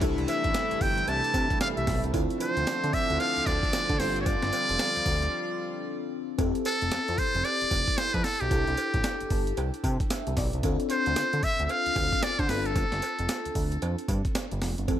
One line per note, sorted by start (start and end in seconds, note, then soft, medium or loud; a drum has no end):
0.00 0.15 C2 loud
0.00 2.10 C3 medium
0.00 2.10 E3 medium
0.00 2.12 G3 medium
0.00 3.96 A3 medium
0.00 2.09 D4 medium
0.00 2.10 E4 loud
0.00 2.10 E4 medium
0.00 2.10 G4 medium
0.00 2.11 A4 loud
0.00 kick loud
0.00 closed hi-hat medium
0.00 tambourine medium
0.00 cowbell medium
0.18 0.26 C2 loud
0.18 closed hi-hat soft
0.28 0.83 E5 medium
0.28 closed hi-hat medium
0.28 tambourine medium
0.28 cowbell medium
0.44 0.53 A1 medium
0.44 kick loud
0.44 closed hi-hat medium
0.54 snare loud
0.54 closed hi-hat medium
0.54 tambourine medium
0.54 cowbell medium
0.71 0.75 G1 medium
0.71 closed hi-hat medium
0.81 1.03 G1 medium
0.81 1.10 G5 loud
0.81 kick medium
0.81 open hi-hat medium
0.81 tambourine medium
0.98 closed hi-hat medium
1.08 1.22 C2 loud
1.08 1.61 A5 loud
1.08 closed hi-hat medium
1.08 cowbell medium
1.24 closed hi-hat medium
1.34 1.48 C3 loud
1.34 kick medium
1.34 closed hi-hat medium
1.34 tambourine medium
1.34 cowbell medium
1.50 kick medium
1.50 closed hi-hat medium
1.61 1.69 F5 loud
1.61 snare loud
1.61 closed hi-hat medium
1.61 tambourine loud
1.61 cowbell medium
1.77 1.86 C2 medium
1.77 2.02 E5 medium
1.77 closed hi-hat medium
1.87 2.01 B1 loud
1.87 kick medium
1.87 snare medium
1.87 open hi-hat medium
1.87 tambourine medium
2.04 2.12 C2 medium
2.04 closed hi-hat medium
2.13 2.28 D2 loud
2.13 6.35 D3 loud
2.13 3.98 F3 medium
2.13 3.96 C4 medium
2.13 6.35 C4 medium
2.13 3.98 D4 loud
2.13 3.96 E4 medium
2.13 3.96 F4 medium
2.13 3.97 A4 loud
2.13 kick loud
2.13 closed hi-hat medium
2.13 tambourine medium
2.13 cowbell medium
2.30 closed hi-hat medium
2.40 2.95 C5 loud
2.40 closed hi-hat medium
2.40 tambourine medium
2.40 cowbell medium
2.57 2.65 D2 medium
2.57 closed hi-hat medium
2.67 2.74 D3 soft
2.67 snare loud
2.67 closed hi-hat medium
2.67 tambourine loud
2.67 cowbell medium
2.84 2.92 D3 loud
2.84 closed hi-hat medium
2.93 3.21 E5 loud
2.93 kick loud
2.93 open hi-hat medium
2.93 tambourine medium
3.10 3.19 D2 medium
3.10 closed hi-hat medium
3.20 3.48 F5 loud
3.20 closed hi-hat medium
3.20 cowbell medium
3.37 3.41 D2 medium
3.37 closed hi-hat medium
3.46 3.60 D2 loud
3.46 4.01 D5 loud
3.46 kick loud
3.46 closed hi-hat medium
3.46 tambourine medium
3.46 cowbell medium
3.63 kick loud
3.63 closed hi-hat medium
3.73 snare loud
3.73 closed hi-hat medium
3.73 tambourine loud
3.73 cowbell medium
3.89 3.98 D3 loud
3.89 kick medium
3.89 closed hi-hat medium
3.99 4.36 G1 loud
3.99 6.36 F3 medium
3.99 6.36 G3 medium
3.99 6.08 C4 medium
3.99 6.08 D4 medium
3.99 6.36 F4 medium
3.99 6.08 F4 medium
3.99 6.09 A4 medium
3.99 4.20 C5 medium
3.99 snare medium
3.99 open hi-hat medium
3.99 tambourine medium
4.16 closed hi-hat soft
4.21 4.27 C#5 medium
4.26 6.12 D5 loud
4.26 kick loud
4.26 closed hi-hat medium
4.26 tambourine medium
4.26 cowbell medium
4.42 4.51 G1 medium
4.42 snare medium
4.42 closed hi-hat medium
4.53 closed hi-hat medium
4.53 tambourine medium
4.53 cowbell medium
4.69 4.78 F1 medium
4.69 closed hi-hat medium
4.79 snare loud
4.79 closed hi-hat medium
4.79 tambourine medium
4.79 cowbell medium
4.96 5.00 D2 soft
4.96 closed hi-hat medium
5.06 5.28 D2 loud
5.06 kick medium
5.06 open hi-hat medium
5.06 tambourine medium
5.22 closed hi-hat medium
6.38 6.52 F1 loud
6.38 8.47 C4 medium
6.38 8.47 E4 medium
6.38 8.47 G4 medium
6.38 8.48 A4 loud
6.38 kick loud
6.38 closed hi-hat medium
6.38 tambourine medium
6.38 cowbell medium
6.55 closed hi-hat medium
6.65 7.20 A4 loud
6.65 closed hi-hat medium
6.65 tambourine medium
6.65 cowbell medium
6.82 6.90 F1 medium
6.82 closed hi-hat medium
6.91 6.99 F2 soft
6.91 snare loud
6.91 closed hi-hat medium
6.91 tambourine loud
6.91 cowbell medium
7.08 7.17 F2 loud
7.08 closed hi-hat medium
7.18 7.46 C5 loud
7.18 kick medium
7.18 open hi-hat medium
7.18 tambourine medium
7.35 7.43 F1 medium
7.35 closed hi-hat medium
7.45 7.99 D5 loud
7.45 closed hi-hat medium
7.45 cowbell medium
7.61 7.66 F1 medium
7.61 closed hi-hat medium
7.71 7.85 F1 loud
7.71 kick loud
7.71 closed hi-hat medium
7.71 tambourine medium
7.71 cowbell medium
7.88 kick loud
7.88 closed hi-hat medium
7.98 8.15 C5 loud
7.98 snare loud
7.98 closed hi-hat medium
7.98 tambourine loud
7.98 cowbell medium
8.14 8.23 F2 loud
8.14 8.26 B4 medium
8.14 kick medium
8.14 closed hi-hat medium
8.24 8.42 A4 loud
8.24 snare medium
8.24 open hi-hat medium
8.24 tambourine medium
8.40 8.50 B1 loud
8.40 9.47 G4 medium
8.40 closed hi-hat medium
8.50 8.65 C2 loud
8.50 10.59 D4 medium
8.50 10.59 E4 medium
8.50 10.60 G4 medium
8.50 10.60 A4 medium
8.50 kick loud
8.50 closed hi-hat medium
8.50 tambourine medium
8.50 cowbell medium
8.67 8.76 C2 loud
8.67 closed hi-hat medium
8.77 closed hi-hat medium
8.77 tambourine medium
8.77 cowbell medium
8.94 9.03 A1 medium
8.94 kick loud
8.94 closed hi-hat medium
9.04 snare loud
9.04 closed hi-hat medium
9.04 tambourine medium
9.04 cowbell medium
9.20 9.25 G1 medium
9.20 closed hi-hat medium
9.30 9.53 G1 medium
9.30 9.56 A5 medium
9.30 kick medium
9.30 open hi-hat medium
9.30 tambourine medium
9.47 closed hi-hat medium
9.57 9.71 C2 loud
9.57 9.82 G5 medium
9.57 closed hi-hat medium
9.57 cowbell medium
9.74 closed hi-hat medium
9.84 9.98 C3 loud
9.84 10.09 G5 medium
9.84 kick medium
9.84 closed hi-hat medium
9.84 tambourine medium
9.84 cowbell medium
10.00 kick medium
10.00 closed hi-hat medium
10.10 10.35 E5 medium
10.10 snare loud
10.10 closed hi-hat medium
10.10 tambourine loud
10.10 cowbell medium
10.27 10.35 C2 medium
10.27 closed hi-hat medium
10.37 10.51 B1 loud
10.37 10.62 D5 medium
10.37 kick loud
10.37 snare medium
10.37 open hi-hat medium
10.37 tambourine medium
10.53 10.62 C2 medium
10.53 closed hi-hat medium
10.63 10.77 D2 loud
10.63 12.45 C4 medium
10.63 12.46 D4 medium
10.63 12.46 F4 medium
10.63 12.46 A4 loud
10.63 kick loud
10.63 closed hi-hat medium
10.63 tambourine medium
10.63 cowbell medium
10.80 closed hi-hat medium
10.90 11.45 C5 loud
10.90 closed hi-hat medium
10.90 tambourine medium
10.90 cowbell medium
11.06 11.15 D2 medium
11.06 closed hi-hat medium
11.16 11.23 D3 soft
11.16 snare loud
11.16 closed hi-hat medium
11.16 tambourine loud
11.16 cowbell medium
11.33 11.42 D3 loud
11.33 closed hi-hat medium
11.43 11.65 E5 loud
11.43 kick medium
11.43 open hi-hat medium
11.43 tambourine medium
11.59 11.68 D2 medium
11.59 closed hi-hat medium
11.65 11.72 E5 medium
11.69 12.25 F5 loud
11.69 closed hi-hat medium
11.69 cowbell medium
11.86 11.90 D2 medium
11.86 closed hi-hat medium
11.96 12.10 D2 medium
11.96 kick loud
11.96 closed hi-hat medium
11.96 tambourine medium
11.96 cowbell medium
12.12 kick medium
12.12 closed hi-hat medium
12.22 12.41 D5 loud
12.22 snare loud
12.22 closed hi-hat medium
12.22 tambourine loud
12.22 cowbell medium
12.39 12.48 D3 loud
12.39 12.51 C5 loud
12.39 kick loud
12.39 closed hi-hat medium
12.49 12.85 G1 loud
12.49 14.57 C4 medium
12.49 14.58 D4 medium
12.49 14.58 F4 medium
12.49 14.58 A4 medium
12.49 12.68 B4 loud
12.49 snare medium
12.49 open hi-hat medium
12.49 tambourine medium
12.66 13.72 A4 loud
12.66 closed hi-hat medium
12.76 kick loud
12.76 closed hi-hat medium
12.76 tambourine medium
12.76 cowbell medium
12.92 13.01 G1 loud
12.92 snare medium
12.92 closed hi-hat soft
13.02 closed hi-hat medium
13.02 tambourine medium
13.02 cowbell medium
13.19 13.27 F1 medium
13.19 closed hi-hat medium
13.29 snare loud
13.29 closed hi-hat medium
13.29 tambourine loud
13.29 cowbell medium
13.45 13.50 D2 medium
13.45 closed hi-hat medium
13.55 13.78 D2 medium
13.55 kick medium
13.55 open hi-hat medium
13.55 tambourine medium
13.72 closed hi-hat medium
13.82 13.96 F2 loud
13.82 closed hi-hat medium
13.82 cowbell medium
13.98 closed hi-hat medium
14.08 14.22 G2 loud
14.08 kick medium
14.08 closed hi-hat medium
14.08 tambourine medium
14.08 cowbell medium
14.25 kick loud
14.25 closed hi-hat medium
14.35 snare loud
14.35 closed hi-hat medium
14.35 tambourine loud
14.35 cowbell medium
14.51 14.60 G1 loud
14.51 closed hi-hat medium
14.62 14.76 F1 loud
14.62 snare medium
14.62 open hi-hat medium
14.62 tambourine medium
14.78 14.87 G1 medium
14.78 closed hi-hat medium
14.88 15.00 F1 loud
14.88 15.00 E3 medium
14.88 15.00 C4 medium
14.88 15.00 G4 medium
14.88 15.00 A4 medium
14.88 kick loud
14.88 closed hi-hat medium
14.88 tambourine medium
14.88 cowbell medium